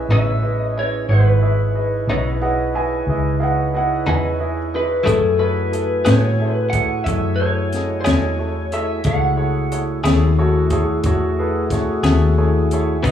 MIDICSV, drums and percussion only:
0, 0, Header, 1, 2, 480
1, 0, Start_track
1, 0, Tempo, 662983
1, 788, Time_signature, 12, 3, 24, 8
1, 9493, End_track
2, 0, Start_track
2, 0, Title_t, "Drums"
2, 3671, Note_on_c, 9, 36, 88
2, 3672, Note_on_c, 9, 42, 74
2, 3744, Note_off_c, 9, 36, 0
2, 3745, Note_off_c, 9, 42, 0
2, 4151, Note_on_c, 9, 42, 51
2, 4223, Note_off_c, 9, 42, 0
2, 4387, Note_on_c, 9, 42, 77
2, 4395, Note_on_c, 9, 38, 105
2, 4459, Note_off_c, 9, 42, 0
2, 4467, Note_off_c, 9, 38, 0
2, 4872, Note_on_c, 9, 42, 61
2, 4873, Note_on_c, 9, 36, 70
2, 4944, Note_off_c, 9, 42, 0
2, 4946, Note_off_c, 9, 36, 0
2, 5114, Note_on_c, 9, 36, 74
2, 5116, Note_on_c, 9, 42, 71
2, 5187, Note_off_c, 9, 36, 0
2, 5188, Note_off_c, 9, 42, 0
2, 5593, Note_on_c, 9, 42, 48
2, 5601, Note_on_c, 9, 38, 28
2, 5666, Note_off_c, 9, 42, 0
2, 5674, Note_off_c, 9, 38, 0
2, 5834, Note_on_c, 9, 42, 72
2, 5842, Note_on_c, 9, 38, 97
2, 5906, Note_off_c, 9, 42, 0
2, 5914, Note_off_c, 9, 38, 0
2, 6314, Note_on_c, 9, 42, 47
2, 6386, Note_off_c, 9, 42, 0
2, 6545, Note_on_c, 9, 42, 68
2, 6551, Note_on_c, 9, 36, 87
2, 6617, Note_off_c, 9, 42, 0
2, 6624, Note_off_c, 9, 36, 0
2, 7036, Note_on_c, 9, 42, 47
2, 7108, Note_off_c, 9, 42, 0
2, 7279, Note_on_c, 9, 42, 76
2, 7286, Note_on_c, 9, 38, 87
2, 7351, Note_off_c, 9, 42, 0
2, 7359, Note_off_c, 9, 38, 0
2, 7749, Note_on_c, 9, 42, 53
2, 7752, Note_on_c, 9, 36, 68
2, 7822, Note_off_c, 9, 42, 0
2, 7825, Note_off_c, 9, 36, 0
2, 7990, Note_on_c, 9, 42, 75
2, 7993, Note_on_c, 9, 36, 73
2, 8062, Note_off_c, 9, 42, 0
2, 8065, Note_off_c, 9, 36, 0
2, 8474, Note_on_c, 9, 36, 65
2, 8476, Note_on_c, 9, 42, 51
2, 8484, Note_on_c, 9, 38, 28
2, 8546, Note_off_c, 9, 36, 0
2, 8549, Note_off_c, 9, 42, 0
2, 8557, Note_off_c, 9, 38, 0
2, 8716, Note_on_c, 9, 42, 70
2, 8723, Note_on_c, 9, 38, 95
2, 8788, Note_off_c, 9, 42, 0
2, 8796, Note_off_c, 9, 38, 0
2, 9203, Note_on_c, 9, 42, 55
2, 9276, Note_off_c, 9, 42, 0
2, 9441, Note_on_c, 9, 36, 87
2, 9448, Note_on_c, 9, 42, 71
2, 9493, Note_off_c, 9, 36, 0
2, 9493, Note_off_c, 9, 42, 0
2, 9493, End_track
0, 0, End_of_file